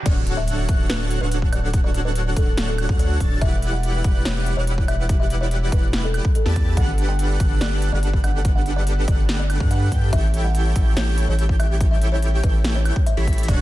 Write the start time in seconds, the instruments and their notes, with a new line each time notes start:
0.06 sub bass D1, supersaw synth D4 F#4 A4 C#5 F#5, kalimba D5, digital synth lead F#6, kick, closed hi-hat, crash, impact
0.27 closed hi-hat
0.37 kalimba E5
0.48 closed hi-hat
0.69 sub bass D1, supersaw synth D4 F#4 A4 C#5 F#5, digital synth lead F#6, kick, closed hi-hat
0.90 sub bass D1, supersaw synth D4 F#4 A4 C#5 F#5, kalimba B4, digital synth lead F#6, snare, closed hi-hat
1.11 closed hi-hat
1.21 sub bass D1, supersaw synth D4 F#4 A4 C#5 F#5, kalimba B4, digital synth lead F#6
1.32 closed hi-hat
1.42 kick
1.53 kalimba D5, closed hi-hat, high woodblock
1.73 kick, closed hi-hat
1.84 kalimba D5
1.94 closed hi-hat
2.05 kalimba B4
2.15 closed hi-hat
2.36 sub bass D1, supersaw synth D4 F#4 F#5, kalimba A4, digital synth lead F#6, kick, closed hi-hat
2.58 snare, closed hi-hat
2.68 kalimba A4
2.78 closed hi-hat, high woodblock
2.89 sub bass D2, supersaw synth D4 F#4 C#5 F#5, digital synth lead F#6, kick
2.99 kalimba D5, closed hi-hat
3.20 sub bass D1, supersaw synth D4 F#4, digital synth lead A6, kick, closed hi-hat
3.41 sub bass E1, supersaw synth E4 G4 B4 D5 F#5, kalimba E5, digital synth lead F#6, kick, closed hi-hat
3.62 closed hi-hat
3.73 kalimba F#5
3.83 closed hi-hat
4.04 sub bass E1, supersaw synth E4 G4 B4 D5 F#5, digital synth lead F#6, kick, closed hi-hat
4.25 sub bass E1, supersaw synth E4 G4 B4 D5 F#5, kalimba C#5, digital synth lead F#6, snare, closed hi-hat
4.46 closed hi-hat
4.57 sub bass E1, supersaw synth E4 G4 B4 D5 F#5, kalimba C#5, digital synth lead F#6
4.67 closed hi-hat
4.78 kick
4.88 kalimba E5, closed hi-hat, high woodblock
5.09 kick, closed hi-hat
5.20 kalimba E5
5.30 closed hi-hat
5.41 kalimba C#5
5.51 closed hi-hat
5.72 sub bass E1, supersaw synth E4 G4 B4 D5 F#5, kalimba B4, digital synth lead F#6, kick, closed hi-hat
5.93 snare, closed hi-hat
6.04 kalimba A4
6.14 closed hi-hat, high woodblock
6.25 kick
6.35 kalimba A4, closed hi-hat
6.46 sub bass E2, supersaw synth E4 G4 B4 D5 A5, digital synth lead A6, snare
6.56 kick, closed hi-hat
6.77 sub bass G1, supersaw synth D4 G4 A4 B4 F#5, kalimba F#5, digital synth lead F#6, kick, closed hi-hat
6.98 closed hi-hat
7.09 kalimba G5
7.19 closed hi-hat
7.40 sub bass G1, supersaw synth D4 G4 B4 F#5, digital synth lead F#6, kick, closed hi-hat
7.61 sub bass G1, supersaw synth D4 G4 A4 B4 F#5, kalimba D5, digital synth lead F#6, snare, closed hi-hat
7.82 closed hi-hat
7.92 sub bass G1, supersaw synth D4 G4 A4 B4 F#5, kalimba D5, digital synth lead F#6
8.03 closed hi-hat
8.14 kick
8.24 kalimba F#5, closed hi-hat, high woodblock
8.45 kick, closed hi-hat
8.55 kalimba F#5
8.66 closed hi-hat
8.76 kalimba D5
8.87 closed hi-hat
9.08 sub bass G1, supersaw synth D4 G4 A4 B4 F#5, kalimba D5, digital synth lead F#6, kick, closed hi-hat
9.29 snare, closed hi-hat
9.39 kalimba D5
9.50 closed hi-hat, high woodblock
9.60 sub bass G2, supersaw synth D4 G4 A4 B4 F#5, digital synth lead F#6, kick
9.71 kalimba F#5, closed hi-hat
9.92 sub bass G2, supersaw synth D4 G4 A4 B4 G5, digital synth lead G6, kick, closed hi-hat
10.13 sub bass A1, supersaw synth E4 G4 A4 C#5 G5, kalimba E5, digital synth lead G6, kick, closed hi-hat
10.34 closed hi-hat
10.44 kalimba F#5
10.55 closed hi-hat
10.76 sub bass A1, supersaw synth E4 G4 A4 G5, digital synth lead G6, kick, closed hi-hat
10.97 sub bass A1, supersaw synth E4 G4 A4 C#5 G5, kalimba C#5, digital synth lead G6, snare, closed hi-hat
11.18 closed hi-hat
11.28 sub bass A1, supersaw synth E4 G4 A4 C#5 G5, kalimba C#5, digital synth lead G6
11.39 closed hi-hat
11.49 kick
11.59 kalimba E5, closed hi-hat, high woodblock
11.81 kick, closed hi-hat
11.91 kalimba E5
12.02 closed hi-hat
12.12 kalimba C#5
12.22 closed hi-hat
12.43 sub bass A1, supersaw synth E4 G4 G5, kalimba B4, digital synth lead G6, kick, closed hi-hat
12.64 snare, closed hi-hat
12.75 kalimba C#5
12.85 closed hi-hat, high woodblock
12.96 kick
13.06 kalimba E5, closed hi-hat
13.17 sub bass A1, supersaw synth E4 G4 A4 C#5 B5, digital synth lead B6
13.27 kick, closed hi-hat
13.33 closed hi-hat
13.38 closed hi-hat
13.43 closed hi-hat
13.48 sub bass D1, clean electric guitar D3 D4 F#4 C#5, supersaw synth D4 F#4 A4 C#5 F#5, kalimba D5, digital synth lead F#6, kick, closed hi-hat, crash